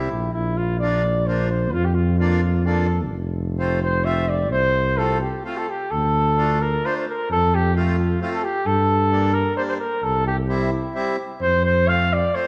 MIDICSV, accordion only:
0, 0, Header, 1, 2, 480
1, 0, Start_track
1, 0, Key_signature, -1, "major"
1, 0, Tempo, 464037
1, 362, Time_signature, 3, 2, 24, 8
1, 7076, Tempo, 458365
1, 12973, End_track
2, 0, Start_track
2, 0, Title_t, "Accordion"
2, 0, Program_c, 0, 21
2, 849, Note_on_c, 0, 58, 49
2, 851, Note_on_c, 0, 65, 57
2, 852, Note_on_c, 0, 62, 44
2, 1065, Note_off_c, 0, 58, 0
2, 1066, Note_off_c, 0, 62, 0
2, 1066, Note_off_c, 0, 65, 0
2, 1324, Note_on_c, 0, 65, 46
2, 1325, Note_on_c, 0, 58, 49
2, 1327, Note_on_c, 0, 62, 43
2, 1542, Note_off_c, 0, 58, 0
2, 1542, Note_off_c, 0, 65, 0
2, 1543, Note_off_c, 0, 62, 0
2, 2276, Note_on_c, 0, 58, 44
2, 2277, Note_on_c, 0, 65, 65
2, 2278, Note_on_c, 0, 62, 47
2, 2493, Note_off_c, 0, 58, 0
2, 2494, Note_off_c, 0, 62, 0
2, 2494, Note_off_c, 0, 65, 0
2, 2750, Note_on_c, 0, 62, 53
2, 2750, Note_on_c, 0, 65, 57
2, 2751, Note_on_c, 0, 58, 44
2, 2968, Note_off_c, 0, 62, 0
2, 2968, Note_off_c, 0, 65, 0
2, 2969, Note_off_c, 0, 58, 0
2, 3711, Note_on_c, 0, 60, 47
2, 3714, Note_on_c, 0, 57, 48
2, 3715, Note_on_c, 0, 65, 57
2, 3926, Note_off_c, 0, 60, 0
2, 3927, Note_off_c, 0, 57, 0
2, 3928, Note_off_c, 0, 65, 0
2, 4188, Note_on_c, 0, 57, 56
2, 4190, Note_on_c, 0, 60, 48
2, 4190, Note_on_c, 0, 65, 52
2, 4404, Note_off_c, 0, 57, 0
2, 4405, Note_off_c, 0, 60, 0
2, 4405, Note_off_c, 0, 65, 0
2, 5142, Note_on_c, 0, 65, 57
2, 5144, Note_on_c, 0, 57, 48
2, 5150, Note_on_c, 0, 60, 39
2, 5362, Note_off_c, 0, 65, 0
2, 5363, Note_off_c, 0, 57, 0
2, 5366, Note_off_c, 0, 60, 0
2, 5631, Note_on_c, 0, 57, 51
2, 5634, Note_on_c, 0, 60, 43
2, 5635, Note_on_c, 0, 65, 52
2, 5855, Note_off_c, 0, 57, 0
2, 5857, Note_off_c, 0, 60, 0
2, 5857, Note_off_c, 0, 65, 0
2, 6594, Note_on_c, 0, 65, 61
2, 6598, Note_on_c, 0, 62, 51
2, 6602, Note_on_c, 0, 57, 53
2, 6815, Note_off_c, 0, 65, 0
2, 6817, Note_off_c, 0, 62, 0
2, 6819, Note_off_c, 0, 57, 0
2, 7080, Note_on_c, 0, 57, 52
2, 7082, Note_on_c, 0, 62, 44
2, 7082, Note_on_c, 0, 65, 50
2, 7299, Note_off_c, 0, 57, 0
2, 7300, Note_off_c, 0, 62, 0
2, 7300, Note_off_c, 0, 65, 0
2, 8035, Note_on_c, 0, 57, 54
2, 8038, Note_on_c, 0, 60, 47
2, 8041, Note_on_c, 0, 65, 62
2, 8252, Note_off_c, 0, 57, 0
2, 8253, Note_off_c, 0, 60, 0
2, 8255, Note_off_c, 0, 65, 0
2, 8514, Note_on_c, 0, 57, 62
2, 8518, Note_on_c, 0, 60, 49
2, 8518, Note_on_c, 0, 65, 57
2, 8728, Note_off_c, 0, 57, 0
2, 8729, Note_off_c, 0, 60, 0
2, 8730, Note_off_c, 0, 65, 0
2, 9456, Note_on_c, 0, 62, 60
2, 9458, Note_on_c, 0, 55, 54
2, 9458, Note_on_c, 0, 58, 53
2, 9677, Note_off_c, 0, 62, 0
2, 9678, Note_off_c, 0, 55, 0
2, 9678, Note_off_c, 0, 58, 0
2, 9935, Note_on_c, 0, 55, 51
2, 9935, Note_on_c, 0, 62, 52
2, 9937, Note_on_c, 0, 58, 53
2, 10156, Note_off_c, 0, 55, 0
2, 10156, Note_off_c, 0, 58, 0
2, 10156, Note_off_c, 0, 62, 0
2, 10895, Note_on_c, 0, 55, 57
2, 10898, Note_on_c, 0, 64, 57
2, 10899, Note_on_c, 0, 60, 45
2, 11119, Note_off_c, 0, 55, 0
2, 11120, Note_off_c, 0, 64, 0
2, 11121, Note_off_c, 0, 60, 0
2, 11380, Note_on_c, 0, 60, 42
2, 11380, Note_on_c, 0, 64, 62
2, 11381, Note_on_c, 0, 55, 51
2, 11605, Note_off_c, 0, 60, 0
2, 11605, Note_off_c, 0, 64, 0
2, 11606, Note_off_c, 0, 55, 0
2, 12355, Note_on_c, 0, 57, 57
2, 12355, Note_on_c, 0, 60, 46
2, 12359, Note_on_c, 0, 65, 52
2, 12577, Note_off_c, 0, 57, 0
2, 12577, Note_off_c, 0, 60, 0
2, 12579, Note_off_c, 0, 65, 0
2, 12829, Note_on_c, 0, 57, 54
2, 12833, Note_on_c, 0, 65, 58
2, 12835, Note_on_c, 0, 60, 45
2, 12973, Note_off_c, 0, 57, 0
2, 12973, Note_off_c, 0, 60, 0
2, 12973, Note_off_c, 0, 65, 0
2, 12973, End_track
0, 0, End_of_file